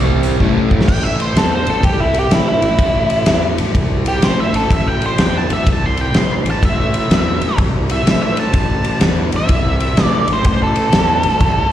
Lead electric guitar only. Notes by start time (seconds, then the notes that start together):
0.88 G5
1.03 E5
1.22 C5
1.38 A4
1.55 C5
1.70 A4
1.85 G4
2.00 E4
2.19 G4
2.33 E4
2.49 E4
4.08 G4
4.24 C5
4.40 E5
4.56 A4
4.73 E5
4.88 G5
5.06 C5
5.21 G5
5.38 A5
5.53 E5
5.73 A5
5.86 C6
6.01 G5
6.17 C6
6.51 A5
6.65 E5
7.92 E5
8.23 E5
8.39 A5
8.54 A5
9.36 E5
10.04 D5
10.33 C5
10.47 C5
10.63 A4